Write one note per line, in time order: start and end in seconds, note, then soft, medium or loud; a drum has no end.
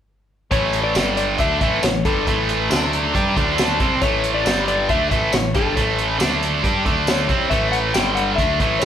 0.51 0.92 A1 medium
0.51 0.94 A2 medium
0.51 0.95 E3 medium
0.51 0.95 A3 loud
0.51 0.83 C#5 medium
0.51 kick loud
0.51 closed hi-hat medium
0.73 closed hi-hat medium
0.84 1.16 D5 loud
0.95 1.36 G1 medium
0.95 1.38 G2 medium
0.95 1.38 D3 medium
0.95 1.39 G3 medium
0.95 snare loud
0.95 closed hi-hat medium
0.95 tambourine loud
1.17 1.40 D5 medium
1.17 closed hi-hat medium
1.38 1.59 D2 medium
1.38 1.60 D3 medium
1.38 1.60 A3 medium
1.38 1.61 D4 medium
1.38 1.60 E5 loud
1.38 kick medium
1.38 closed hi-hat medium
1.61 1.81 A1 medium
1.61 1.83 A2 medium
1.61 1.83 E3 medium
1.61 1.83 A3 medium
1.61 1.84 E5 medium
1.61 kick loud
1.61 closed hi-hat medium
1.83 2.03 A1 medium
1.83 2.01 A2 medium
1.83 2.01 E3 medium
1.83 2.03 C#5 medium
1.83 snare loud
1.83 closed hi-hat medium
1.83 tambourine loud
2.05 2.25 G1 medium
2.05 2.27 G2 medium
2.05 2.27 D3 medium
2.05 2.27 G3 medium
2.05 3.32 A4 medium
2.05 kick medium
2.05 closed hi-hat medium
2.27 2.68 A1 medium
2.27 2.70 A2 medium
2.27 2.70 E3 medium
2.27 2.70 A3 loud
2.27 kick loud
2.27 closed hi-hat medium
2.49 closed hi-hat medium
2.70 3.11 D2 medium
2.70 3.14 D3 medium
2.70 3.14 A3 medium
2.70 3.14 D4 medium
2.70 2.91 G4 medium
2.70 2.92 C5 medium
2.70 snare medium
2.70 closed hi-hat medium
2.70 tambourine loud
2.92 3.13 G4 medium
2.92 3.14 C5 medium
2.92 closed hi-hat medium
3.14 3.35 G2 medium
3.14 3.36 G3 medium
3.14 3.36 D4 medium
3.14 3.36 G4 medium
3.14 3.36 C5 medium
3.14 kick medium
3.14 closed hi-hat medium
3.36 3.77 D2 medium
3.36 3.79 D3 medium
3.36 3.80 A3 medium
3.36 3.80 D4 medium
3.36 3.57 E4 medium
3.36 3.59 A4 medium
3.36 kick medium
3.36 closed hi-hat medium
3.58 3.91 A4 medium
3.58 snare loud
3.58 closed hi-hat medium
3.58 tambourine loud
3.80 4.00 C2 medium
3.80 4.01 C3 medium
3.80 4.01 G3 medium
3.80 4.02 C4 loud
3.80 kick loud
3.80 closed hi-hat medium
4.02 4.43 A1 medium
4.02 4.46 A2 medium
4.02 4.47 E3 loud
4.02 4.46 A3 loud
4.02 4.34 C#5 medium
4.02 kick loud
4.02 closed hi-hat medium
4.24 closed hi-hat medium
4.34 4.65 D5 loud
4.46 4.86 G1 medium
4.46 4.89 G2 medium
4.46 4.88 D3 medium
4.46 4.89 G3 medium
4.46 snare loud
4.46 closed hi-hat medium
4.46 tambourine loud
4.68 4.90 D5 medium
4.68 closed hi-hat medium
4.89 5.09 D2 medium
4.89 5.10 D3 medium
4.89 5.11 A3 medium
4.89 5.11 D4 medium
4.89 5.10 E5 loud
4.89 kick medium
4.89 closed hi-hat medium
5.11 5.31 A1 medium
5.11 5.32 A2 medium
5.11 5.32 E3 medium
5.11 5.33 A3 loud
5.11 5.34 E5 medium
5.11 kick medium
5.11 closed hi-hat medium
5.33 5.53 A1 medium
5.33 5.50 A2 medium
5.33 5.51 E3 medium
5.33 5.55 C#5 medium
5.33 snare loud
5.33 closed hi-hat medium
5.33 tambourine loud
5.54 5.75 G1 medium
5.54 5.76 G2 medium
5.54 5.75 D3 medium
5.54 5.76 G3 loud
5.54 6.82 A4 medium
5.54 kick loud
5.54 closed hi-hat medium
5.76 6.17 A1 medium
5.76 6.19 A2 medium
5.76 6.19 E3 loud
5.76 6.19 A3 loud
5.76 kick loud
5.76 closed hi-hat medium
5.98 closed hi-hat medium
6.19 6.61 D2 medium
6.19 6.63 D3 medium
6.19 6.63 A3 medium
6.19 6.63 D4 loud
6.19 snare loud
6.19 closed hi-hat medium
6.19 tambourine loud
6.43 closed hi-hat medium
6.64 6.84 G2 medium
6.64 6.85 G3 medium
6.64 6.85 D4 medium
6.64 6.85 G4 medium
6.64 kick medium
6.64 closed hi-hat medium
6.85 7.26 D2 medium
6.85 7.28 D3 medium
6.85 7.28 A3 medium
6.85 7.28 D4 medium
6.85 kick medium
6.85 closed hi-hat soft
7.07 7.53 C#5 medium
7.07 snare loud
7.07 closed hi-hat medium
7.07 tambourine loud
7.28 7.50 C2 medium
7.28 7.49 C3 medium
7.28 7.50 G3 medium
7.28 7.50 C4 medium
7.28 kick medium
7.28 closed hi-hat soft
7.50 7.92 A1 medium
7.50 7.94 A2 medium
7.50 7.94 E3 medium
7.50 7.94 A3 loud
7.50 7.71 E5 medium
7.50 kick loud
7.50 closed hi-hat medium
7.72 7.78 F#5 medium
7.72 closed hi-hat medium
7.94 8.35 G1 medium
7.94 8.38 G2 medium
7.94 8.38 D3 medium
7.94 8.38 G3 medium
7.94 8.14 G5 medium
7.94 snare loud
7.94 closed hi-hat medium
7.94 tambourine loud
8.15 8.35 F#5 medium
8.15 closed hi-hat medium
8.36 8.59 D2 medium
8.36 8.60 D3 medium
8.36 8.60 A3 medium
8.36 8.60 D4 medium
8.36 8.82 E5 loud
8.36 kick medium
8.36 closed hi-hat medium
8.60 8.80 A1 medium
8.60 8.81 A2 medium
8.60 8.82 E3 loud
8.60 8.82 A3 loud
8.60 kick loud
8.60 closed hi-hat medium
8.79 8.85 A1 medium
8.79 8.85 C#5 medium
8.79 closed hi-hat medium
8.79 tambourine loud